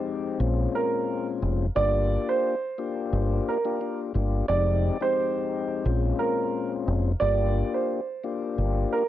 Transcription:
Already playing: F2 G#3 C4 D#4 G4 C5
0.40 A#1 A#2 G#3 C4 C#4 F4
0.75 A#4
1.42 F1
1.75 G1 A#3 D4 F4 G4 D5
2.29 C5
2.78 A#3 D4 F4 G4
3.13 G1
3.48 A#4
3.65 A#3 D4 F4 G4
3.81 A#3 D4 F4 G4
4.14 G1 A#3 D4 F4 G4
4.48 F1 F2 G#3 C4 D#4 G4 D5
5.00 F2 G#3 C4 D#4 G4 C5
5.85 A#1 A#2 G#3 C4 C#4 F4
6.19 A#4
6.88 F1
7.20 G1 A#3 D4 F4 G4 D5
7.74 C5
8.24 A#3 D4 F4 G4
8.58 G1
8.92 A#4

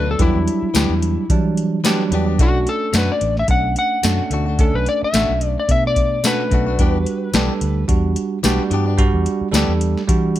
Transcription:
Already playing: D2 D3 A3 B3
0.06 F#3 A3 D4
0.11 A4
0.19 E2 E3 F#3 G3 B3 D4 E4 G4, kick, closed hi-hat
0.35 E2
0.48 closed hi-hat
0.62 muted fingered electric bass stroke
0.74 D2 E3 F#3 G3 B3 D4 G4, snare, closed hi-hat, tambourine
0.89 E2
1.02 closed hi-hat
1.29 E3 F#3 G3 D4, kick, closed hi-hat
1.57 closed hi-hat
1.84 E3 F#3 G3 B3 D4 G4, snare, closed hi-hat, tambourine
2.11 E2 E3 B3 D4 G4, closed hi-hat
2.26 B3 D4 G4
2.39 B1 B2 A3 C#4 D4 F#4, kick, closed hi-hat
2.67 A4, closed hi-hat
2.93 F#2 B2 A3 C#4 D4 F#4, snare, closed hi-hat, tambourine
2.98 B4
3.12 D5
3.21 A1, closed hi-hat
3.37 E5, snare
3.48 B1 A3 C#4 D4 F#5, kick, closed hi-hat
3.76 F#5, closed hi-hat
4.03 F#2 B2 A3 C#4 D4 F#4, snare, closed hi-hat, tambourine
4.30 D2 B2 A3 D4 F#4, closed hi-hat
4.46 A3 D4 F#4
4.59 A3 C#4 D4 A4, kick, closed hi-hat
4.74 B1 B4
4.86 D5, closed hi-hat
5.03 E5, muted fingered electric bass stroke
5.13 A1 B2 A3 C#4 D4 F#4, snare, closed hi-hat, tambourine
5.29 B1
5.41 closed hi-hat
5.46 D5
5.60 D5
5.68 B2 A3 B3 D4 E5, kick, closed hi-hat
5.87 D5
5.96 kick, closed hi-hat
6.24 B2 A3 C#4 D4 F#4 B4, snare, closed hi-hat, tambourine
6.51 B1 B2 A3 D4 F#4, kick, closed hi-hat
6.66 A3 D4 F#4
6.79 E2 E3 G3 B3 D4 F#4 G4, kick, closed hi-hat
7.06 closed hi-hat
7.34 B1 E3 G3 B3 D4 G4 A4, snare, closed hi-hat, tambourine
7.61 D2, closed hi-hat
7.88 E2 G3 D4 F#4, kick, closed hi-hat
8.16 closed hi-hat
8.43 B1 E3 G3 B3 D4 F#4 G4, snare, closed hi-hat, tambourine
8.71 G2 E3 B3 D4 G4, closed hi-hat
8.86 B3 D4 G4
8.98 G3 D4 F#4, kick, closed hi-hat
9.14 E2
9.26 closed hi-hat
9.41 muted fingered electric bass stroke
9.51 D2 E3 G3 B3 D4 A4, snare, closed hi-hat, tambourine
9.56 G4
9.68 E2
9.81 closed hi-hat
9.97 snare
10.07 E3 G3 D4 F#4, kick, closed hi-hat
10.36 closed hi-hat

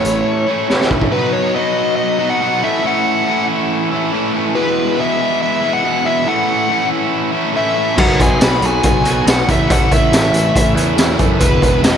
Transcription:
Already playing: A2 E3 A3 C#4 E4 C#5
0.05 A1, closed hi-hat
0.47 E3 A3 C#4 E4
0.51 A2
0.67 A2 E3 A3 C#4, snare
0.72 E4
0.81 snare
0.91 kick
1.01 kick
1.11 B2 F#3 B3 D#4 B4
1.15 F#4
1.33 C#5
1.54 F#3 B3 D#4 F#4 D#5
1.96 D#5
2.19 B3 D#4 F#4
2.30 F#5
2.40 B2 F#3 B3 D#4 F#4
2.61 A2 E3 A3 C#4 E4 E5
2.83 A2 E3 A3 C#4 E4
2.87 F#5
3.25 E3 A3 C#4
3.30 E4
3.91 A3 C#4 E4
4.12 A2 E3 A3 C#4 E4
4.34 A3 C#4 E4
4.54 E2 B2 E3 G#3 B3 E4 B4
4.97 E3 G#3 B3 E4 E5
5.43 E5
5.61 G#3 B3 E4
5.65 E3
5.73 F#5
5.84 E2 B2 E3 G#3 B3 E4
6.05 E3 G#3 B3 E4 E5
6.26 A2 E3 A3 C#4 F#5
6.30 E4
6.69 E3 A3 C#4 E4
7.33 A3 C#4 E4
7.53 A2 E3 A3 C#4 E4 E5
7.75 A3 C#4 E4
7.96 B1 B2 F#3 B3 D#4 F#5, kick, crash
8.01 F#4
8.19 B1 G#5, kick, closed hi-hat
8.39 B1 F#3 B3 D#4 F#4, snare, closed hi-hat, tambourine
8.44 B5
8.62 B1, closed hi-hat
8.66 G#5
8.83 B1, kick, closed hi-hat
9.04 B1 D#4 F#4, closed hi-hat
9.08 B3
9.25 B1 B2 F#3 B3 D#4 F#4, snare, closed hi-hat, tambourine
9.30 F#5
9.47 A1 A2 E3 A3 C#4 E4 E5, kick, closed hi-hat
9.68 A1 A2 E3 A3 C#4 E4 F#5, kick, closed hi-hat
9.91 A1 E5, kick, closed hi-hat
10.12 A1 E3 A3 C#4, snare, closed hi-hat, tambourine
10.16 E4
10.33 A1, closed hi-hat
10.55 A1, kick, closed hi-hat
10.75 E2 C#4 E4, closed hi-hat
10.79 A3
10.97 E2 A2 E3 A3 C#4, snare, closed hi-hat, tambourine
11.01 E4
11.18 F#2 A3 C#4 E4, kick, closed hi-hat
11.39 E1 E2 B2 E3 G#3 B3 E4 B4, kick, closed hi-hat
11.62 E1, kick, closed hi-hat
11.82 E1 E3 G#3 B3 D#5, snare, closed hi-hat, tambourine
11.86 E4

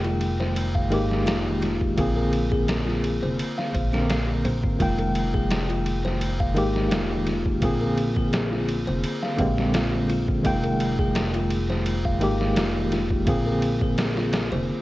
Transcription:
Already playing: F1 D#3 G#3 A#3 G5
0.04 F4, ride
0.21 ride
0.40 C5, snare
0.56 ride
0.75 F5, kick
0.90 G#1 D#3 G#3 A#3 G4, ride
1.11 snare
1.26 F1 F4, snare, ride
1.62 F4, snare, ride
1.81 kick
1.97 A#1 D3 A#3 C4 F4 G#4, kick, ride
2.16 A#4
2.33 ride
2.52 G#4, kick
2.68 snare, ride
2.87 F4, snare
3.04 ride
3.23 F1 C5
3.39 ride
3.58 F5, snare
3.74 A#1 C5, kick, ride
3.92 D3 A#3 C4 D4 A#4, snare
4.10 C4, snare, ride
4.45 A#1 C5, ride
4.64 G#1, kick
4.79 F1 D#3 G#3 A#3 F4 G5, kick, ride
4.99 A#4, ride
5.15 ride
5.34 G#4, kick
5.51 snare, ride
5.69 F4, ride
5.86 ride
6.05 C5, snare
6.21 ride
6.40 F5, kick
6.55 G#1 D#3 G#3 A#3 G4, ride
6.76 snare
6.92 F1 F4, snare, ride
7.27 F4, snare, ride
7.46 kick
7.61 A#1 D3 A#3 C4 F4 G#4, kick, ride
7.81 A#4
7.98 ride
8.16 G#4, kick
8.33 snare, ride
8.52 F4, snare
8.68 ride
8.87 F1 C5
9.04 ride
9.23 F5, snare
9.37 A#1 D3 G#3 A#3 C4 G4, kick, ride
9.58 snare
9.74 F4, snare, ride
10.09 F4, ride
10.28 kick
10.43 F1 D#3 G#3 A#3 F4 G5, kick, ride
10.64 A#4, ride
10.80 ride
10.99 G#4, kick
11.15 snare, ride
11.34 F4, ride
11.50 ride
11.70 C5, snare
11.86 ride
12.05 F5, kick
12.20 G#1 D#3 G#3 A#3 G4, ride
12.41 snare
12.56 F1 F4, snare, ride
12.92 F4, snare, ride
13.11 kick
13.26 A#1 D3 A#3 C4 F4 G#4, kick, ride
13.46 A#4
13.62 ride
13.81 G#4, kick
13.98 snare, ride
14.17 F4, snare
14.33 snare, ride
14.52 F1 C5

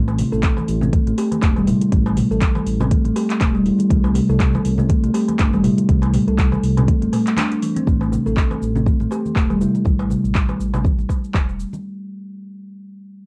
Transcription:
Already playing: A1
0.08 darbuka ka, cabasa
0.18 open hi-hat, muted conga, darbuka dum, cabasa
0.32 A1 A4, cabasa
0.43 kick, clap, closed hi-hat, cabasa
0.57 darbuka ka, muted conga, high conga, cabasa
0.68 A1, open hi-hat, cabasa
0.81 C4, low conga, cabasa
0.93 A3, kick, closed hi-hat, high conga, cabasa
1.07 A1 A3, closed hi-hat, muted conga, cabasa
1.18 G4, open hi-hat, darbuka ka, cabasa
1.31 closed hi-hat, darbuka tek, high conga, cabasa
1.42 E1, kick, clap, closed hi-hat, darbuka tek, cabasa
1.56 G3, darbuka ka, high conga, cabasa
1.67 E4, mid tom, open hi-hat, darbuka dum, cabasa
1.81 closed hi-hat, muted conga, cabasa
1.92 A1 A3, kick, closed hi-hat, high conga, cabasa
2.06 darbuka ka, darbuka tek, cabasa
2.17 mid tom, open hi-hat, muted conga, darbuka dum, cabasa
2.31 A1 A4, cabasa
2.42 kick, clap, closed hi-hat, cabasa
2.55 darbuka ka, muted conga, high conga, cabasa
2.67 A1, open hi-hat, cabasa
2.80 C4, darbuka tek, low conga, cabasa
2.91 A3, kick, closed hi-hat, high conga, cabasa
3.05 A1 A3, closed hi-hat, muted conga, cabasa
3.16 G4, open hi-hat, darbuka ka, cabasa
3.30 clap, closed hi-hat, cabasa
3.41 E1, kick, clap, closed hi-hat, muted conga, darbuka tek, high conga, cabasa
3.55 G3, cabasa
3.66 E4, open hi-hat, cabasa
3.79 closed hi-hat, muted conga, cabasa
3.90 C2 A3, kick, closed hi-hat, high conga, cabasa
4.04 darbuka ka, cabasa
4.14 open hi-hat, muted conga, darbuka dum, cabasa
4.29 C2 A4, cabasa
4.40 kick, clap, closed hi-hat, cabasa
4.53 muted conga, darbuka ka, high conga, cabasa
4.65 C2, open hi-hat, cabasa
4.78 C4, low conga, cabasa
4.89 A3, kick, closed hi-hat, high conga, cabasa
5.04 C2 A3, closed hi-hat, muted conga, cabasa
5.14 G4, open hi-hat, darbuka ka, cabasa
5.28 closed hi-hat, darbuka tek, high conga, cabasa
5.39 G1, kick, clap, closed hi-hat, muted conga, darbuka tek, cabasa
5.53 G3, darbuka ka, high conga, cabasa
5.63 E4, mid tom, open hi-hat, darbuka dum, cabasa
5.78 closed hi-hat, muted conga, cabasa
5.89 C2 A3, kick, closed hi-hat, high conga, cabasa
6.02 closed hi-hat, darbuka ka, darbuka tek, cabasa
6.14 mid tom, open hi-hat, muted conga, darbuka dum, cabasa
6.28 C2 A4, closed hi-hat, cabasa
6.38 kick, clap, closed hi-hat, cabasa
6.52 darbuka ka, muted conga, high conga, cabasa
6.63 C2, open hi-hat, cabasa
6.77 C4, closed hi-hat, mid tom, darbuka tek, low conga, cabasa
6.88 A3, kick, closed hi-hat, high conga, cabasa
7.02 G1 A3, closed hi-hat, muted conga, cabasa
7.13 A3, mid tom, open hi-hat, darbuka ka, darbuka tek, cabasa
7.27 clap, closed hi-hat, cabasa
7.37 D4, clap, closed hi-hat, muted conga, high conga, darbuka tek, cabasa
7.52 D4, closed hi-hat, cabasa
7.62 E3, open hi-hat, cabasa
7.76 C4, closed hi-hat, muted conga, cabasa
7.87 A1 A3, kick, high conga, cabasa
8.01 darbuka ka, cabasa
8.12 muted conga, darbuka dum, cabasa
8.26 A1 A4, cabasa
8.37 kick, clap, cabasa
8.51 muted conga, darbuka ka, high conga, cabasa
8.62 A1, cabasa
8.76 C4, low conga, cabasa
8.86 A3, kick, high conga, cabasa
9.00 A1 A3, muted conga, cabasa
9.11 G4, darbuka ka, darbuka tek, cabasa
9.26 high conga, cabasa
9.36 E1, kick, clap, darbuka tek, cabasa
9.50 G3, darbuka ka, high conga, cabasa
9.61 E4, darbuka dum, cabasa
9.75 muted conga, cabasa
9.85 A1, kick, high conga, cabasa
9.99 darbuka ka, darbuka tek, cabasa
10.10 muted conga, darbuka dum, cabasa
10.24 A1, cabasa
10.35 kick, clap, cabasa
10.48 muted conga, darbuka ka, high conga, cabasa
10.60 A1, cabasa
10.74 darbuka tek, low conga, cabasa
10.84 kick, high conga, cabasa
10.99 A1, muted conga, cabasa
11.09 kick, darbuka ka, cabasa
11.24 cabasa
11.34 E1, kick, clap, muted conga, darbuka tek, high conga, cabasa
11.49 cabasa
11.60 cabasa
11.73 muted conga, cabasa

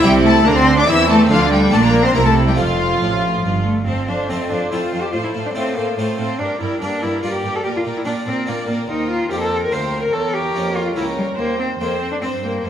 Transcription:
0.00 G3 C4 E4 G4
0.04 C2 C3 E4 G4 G5
0.24 A3 A4 A5
0.45 D2 D3 A#3 D4 A#4 A#5
0.55 C4 C5 C6
0.78 D4 D5 D6
0.88 E2 E3 C4 E4 E5 E6
1.10 A3 A4 A5
1.27 D2 D3 A3 D4 F5
1.31 D3 F3 D4 F4
1.50 G3 G4 G5
1.70 A#1 A#2 A3 A#3 D4 F4 A5
1.74 A#2 A4
1.83 A#3 A#4 A#5
2.03 C4 C5 C6
2.13 C2 C3 A#3 C4 E4 A#4 A#5
2.24 A3 A4 A5
2.47 G3 G4 G5
2.54 F1 F2 F3 A3 C4 F4 F5
2.59 F2
3.01 A1 A2
3.44 G1 G2
3.65 A3
3.86 F2 C4 C5 F5 A5
4.07 F2 D4 C5 F5 A5
4.29 F2 A3 C4 F4 C5 F5 A5
4.49 F2 D4 C5 F5 A5
4.71 F2 A3 C4 E4 F4 C5 F5 A5
4.81 F4
4.92 F2 C5 F5 A5
5.02 G4
5.12 A2 F4 C5 F5 A5
5.23 E4
5.33 A2 C5 F5 A5
5.46 D4
5.54 A2 A3 C4 F4 C5 F5 A5
5.75 A2 A#3 C5 F5 A5
5.97 A2 A3 C4 F4 C5 F5 A5
6.18 A2 C4 C5 F5 A5
6.38 G2 D4 A#4 D5 G5
6.60 G2 E4 A#4 D5 G5
6.80 G2 A#3 D4 A#4 D5 G5
7.01 G2 E4 A#4 D5 G5
7.22 G2 A#3 D4 F4 A#4 D5 G5
7.33 G4
7.42 G2 A#4 D5 G5
7.56 A4
7.63 A#2 G4 A#4 D5 G5
7.76 F4
7.84 A#2 A#4 D5 G5
7.97 E4
8.05 A#2 A#3 D4 A#4 D5 G5
8.26 A#2 C4 A#4 D5 G5
8.46 A#2 A#3 D4 A#4 D5 G5
8.67 A#2 A#4 D5 G5
8.88 D#2 D#4 A#4 C5 G5
9.11 F4
9.30 F2 A#3 C4 G4 A#4 C5 G5
9.41 A4
9.63 A#4
9.71 D2 A#3 C4 A#4 C5 G5
10.03 A#4
10.12 E2 A4 A#4 C#5 G5
10.34 G4
10.55 F2 A#3 C#4
10.76 F4
10.96 C#2 A#3 C#4 E4 A#4 C#5 G5
11.18 G3
11.38 D#2 A#3 C5 G5
11.59 C4
11.79 F2 A#3 C4 C5 G5
12.01 C4
12.12 D4
12.21 G2 C4 C5 G5
12.44 A#3
12.63 F2 A3 C5 F5

